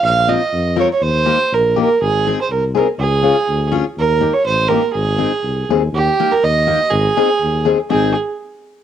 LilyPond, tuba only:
\new Staff \with { instrumentName = "Tuba" } { \clef bass \time 2/4 \key aes \major \tempo 4 = 122 bes,,4 f,4 | ees,4 bes,,4 | aes,,4 c,4 | des,4 d,4 |
ees,4 a,,4 | aes,,4 c,8 ees,8 | ees,8 r8 ees,4 | aes,,8 r8 ees,4 |
aes,,8 r4. | }